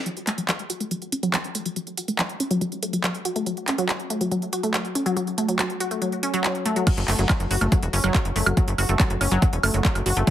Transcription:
0.06 F#3, closed hi-hat
0.17 closed hi-hat
0.27 A3, clap, closed hi-hat
0.38 F#3, closed hi-hat
0.49 F#3, clap, closed hi-hat
0.59 closed hi-hat
0.70 F#4, closed hi-hat
0.80 A3, closed hi-hat
0.91 F#3, closed hi-hat
1.02 closed hi-hat
1.12 C#4, closed hi-hat
1.23 F#3, closed hi-hat
1.34 F#3, clap, closed hi-hat
1.44 closed hi-hat
1.55 A3, closed hi-hat
1.66 F#3, closed hi-hat
1.76 F#3, closed hi-hat
1.87 closed hi-hat
1.97 F#4, closed hi-hat
2.08 A3, closed hi-hat
2.19 F#3, clap, closed hi-hat
2.29 closed hi-hat
2.40 C#4, closed hi-hat
2.51 F#3, closed hi-hat
2.61 F#3, closed hi-hat
2.72 closed hi-hat
2.83 A3, closed hi-hat
2.93 F#3, closed hi-hat
3.04 F#3, clap, closed hi-hat
3.15 closed hi-hat
3.25 F#4, closed hi-hat
3.36 A3, closed hi-hat
3.46 F#3, closed hi-hat
3.57 closed hi-hat
3.68 C#4, clap, closed hi-hat
3.78 F#3, closed hi-hat
3.89 F#3, clap, closed hi-hat
4.00 closed hi-hat
4.10 A3, closed hi-hat
4.21 F#3, closed hi-hat
4.32 F#3, closed hi-hat
4.42 closed hi-hat
4.53 F#4, closed hi-hat
4.63 A3, closed hi-hat
4.74 F#3, clap, closed hi-hat
4.85 closed hi-hat
4.95 C#4, closed hi-hat
5.06 F#3, closed hi-hat
5.17 F#3, closed hi-hat
5.27 closed hi-hat
5.38 A3, closed hi-hat
5.49 F#3, closed hi-hat
5.59 F#3, clap, closed hi-hat
5.70 closed hi-hat
5.80 F#4, closed hi-hat
5.91 A3, closed hi-hat
6.02 F#3, closed hi-hat
6.12 closed hi-hat
6.23 C#4, closed hi-hat
6.34 F#3, closed hi-hat
6.44 F#3, clap, closed hi-hat
6.55 closed hi-hat
6.66 A3, closed hi-hat
6.76 F#3, closed hi-hat
6.87 F#3, kick, closed hi-hat, crash, high woodblock
6.97 F#1, closed hi-hat
7.08 F#1 A3, clap, open hi-hat
7.19 F#1 F#3, closed hi-hat
7.29 F#3, kick, clap, closed hi-hat, high woodblock
7.40 F#1, closed hi-hat
7.51 F#1 F#4, open hi-hat
7.61 F#1 A3, closed hi-hat, high woodblock
7.72 F#3, kick, closed hi-hat
7.83 E1, closed hi-hat
7.93 F#1 C#4, open hi-hat
8.04 F#1 F#3, closed hi-hat, high woodblock
8.14 F#3, kick, clap, closed hi-hat
8.25 F#1, closed hi-hat
8.36 F#1 A3, open hi-hat
8.46 F#1 F#3, closed hi-hat, high woodblock
8.57 F#3, kick, closed hi-hat
8.68 F#1, closed hi-hat
8.78 F#1 F#4, open hi-hat, high woodblock
8.89 F#1 A3, closed hi-hat
9.00 F#3, kick, clap, closed hi-hat
9.10 F#1, closed hi-hat
9.21 F#1 C#4, open hi-hat, high woodblock
9.31 F#1 F#3, closed hi-hat
9.42 F#3, kick, closed hi-hat
9.53 E1, closed hi-hat
9.63 F#1 A3, open hi-hat, high woodblock
9.74 F#1 F#3, closed hi-hat
9.85 F#3, kick, clap, closed hi-hat
9.95 F#1, closed hi-hat, high woodblock
10.06 F#1 F#4, open hi-hat
10.17 F#1 A3, closed hi-hat
10.27 F#3, kick, closed hi-hat

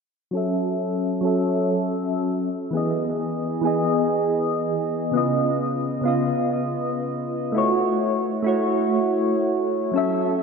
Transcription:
0.31 F#3 C#4 A4
0.37 E5
1.21 F#3 C#4
1.25 A4 E5
2.71 E3 B3 G#4
2.77 D#5
3.61 E3 B3 G#4
3.67 D#5
5.11 C#3 B3 F4
5.17 D#5
6.01 C#3 B3
6.05 F4 D#5
7.52 A3 E4
7.56 F#4 C#5
8.42 A3 E4 F#4
8.48 C#5
9.92 F#3 C#4
9.96 A4 E5

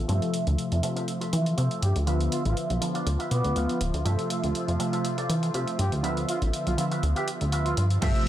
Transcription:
Already playing: A4 A5
0.08 G2 C3 F3 A3 F4 A4 C5 E5, closed hi-hat
0.22 closed hi-hat
0.34 muted clean electric guitar stroke, closed hi-hat
0.47 D2, closed hi-hat
0.58 closed hi-hat
0.72 F2, closed hi-hat
0.82 C3 F3 A3 E5, muted clean electric guitar stroke, closed hi-hat
0.96 F4 A4 C5 E5, closed hi-hat
1.08 closed hi-hat
1.21 F4 A4 C5 E5, closed hi-hat
1.33 E3, closed hi-hat
1.46 muted clean electric guitar stroke, closed hi-hat
1.57 C3 F4 A4 C5 E5, closed hi-hat
1.71 closed hi-hat
1.82 G2 G4, closed hi-hat
1.96 D2, closed hi-hat
2.06 D3 F3 B3 F4 B4 E5, closed hi-hat
2.21 closed hi-hat
2.32 F4, muted clean electric guitar stroke, closed hi-hat
2.45 A1 F4, closed hi-hat
2.57 closed hi-hat
2.70 B1, closed hi-hat
2.81 D3 F3 B3, muted clean electric guitar stroke, closed hi-hat
2.94 F4 B4 D5, closed hi-hat
3.07 D2, closed hi-hat
3.19 F4 B4 E5, closed hi-hat
3.31 B2 B3 D5, closed hi-hat
3.44 D2, muted clean electric guitar stroke, closed hi-hat
3.56 D2 F4 B4 E5 F5, closed hi-hat
3.69 closed hi-hat
3.81 D1, closed hi-hat
3.94 D2, closed hi-hat
4.05 G2 C3 F3 A3 F4 A4 C5 E5, closed hi-hat
4.19 closed hi-hat
4.30 muted clean electric guitar stroke, closed hi-hat
4.44 D2, closed hi-hat
4.55 closed hi-hat
4.68 F2, closed hi-hat
4.79 C3 F3 A3 E5, muted clean electric guitar stroke, closed hi-hat
4.93 F4 A4 C5 E5, closed hi-hat
5.05 closed hi-hat
5.17 F4 A4 C5 D5, closed hi-hat
5.30 E3, closed hi-hat
5.42 muted clean electric guitar stroke, closed hi-hat
5.54 C3 F4 A4 C5 E5, closed hi-hat
5.68 closed hi-hat
5.79 G2 G4, closed hi-hat
5.92 D2, closed hi-hat
6.03 D3 F3 B3 F4 B4 E5, closed hi-hat
6.17 closed hi-hat
6.28 F4, muted clean electric guitar stroke, closed hi-hat
6.42 A1, closed hi-hat
6.53 closed hi-hat
6.67 B1 F4, closed hi-hat
6.77 D3 F3 B3 F4 E5, muted clean electric guitar stroke, closed hi-hat
6.91 F4 B4 E5, closed hi-hat
7.03 D2, closed hi-hat
7.16 F4 G4 B4 E5, closed hi-hat
7.28 closed hi-hat
7.41 D2, muted clean electric guitar stroke, closed hi-hat
7.52 F4 B4 E5, closed hi-hat
7.65 F4, closed hi-hat
7.77 G2 F4, closed hi-hat
7.90 closed hi-hat
8.01 G2 C3 F3 A3 F4 A4 C5 E5, kick, closed hi-hat, crash, shaker
8.15 closed hi-hat

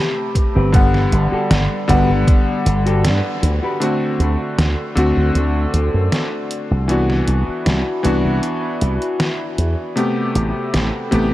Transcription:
Already playing: C3 A3 G4 A5 B5
0.35 muted clean electric guitar stroke, kick, closed hi-hat
0.55 G1 C4 G4 B4
0.72 D3 G3 B3 D5 F#5, kick, closed hi-hat
0.94 snare
1.12 G1, muted clean electric guitar stroke, closed hi-hat
1.32 F#4 G4 A4, muted slap bass stroke
1.50 G1, snare, closed hi-hat
1.88 G1 D3 G3 B3 F#4 G4 B4 F#5, kick, closed hi-hat
2.09 G1
2.28 kick, closed hi-hat
2.65 G1, muted clean electric guitar stroke, closed hi-hat
2.86 F#4 G4 A4, closed hi-hat
3.04 G2, snare, closed hi-hat
3.42 D2, muted clean electric guitar stroke, closed hi-hat
3.62 F#4 G4 B4
3.80 D3 A3 C4 F#4 A4 D5 F#5 C6, closed hi-hat
4.20 D2, closed hi-hat
4.58 D2, snare, closed hi-hat
4.95 D2 D3 A3 C4 F#4, closed hi-hat
5.17 D2
5.35 D2, closed hi-hat
5.74 D2, closed hi-hat
5.94 F#2
6.12 snare, closed hi-hat
6.51 closed hi-hat
6.71 C2
6.88 E3 B3 D4 F#4 E5 B5, closed hi-hat
7.10 snare
7.28 C2, closed hi-hat
7.48 muted slap bass stroke
7.66 C2, snare, closed hi-hat
8.03 C2 E3 B3 D4 F#4, closed hi-hat
8.25 C2
8.43 closed hi-hat
8.81 C2, closed hi-hat
9.02 closed hi-hat
9.20 snare, closed hi-hat
9.58 E2, closed hi-hat
9.96 C3 A3 B3 G4 A4 G5 B5, closed hi-hat
10.35 A1, closed hi-hat
10.74 A1, snare, closed hi-hat
11.11 A1 C3 A3 B3 G4, closed hi-hat

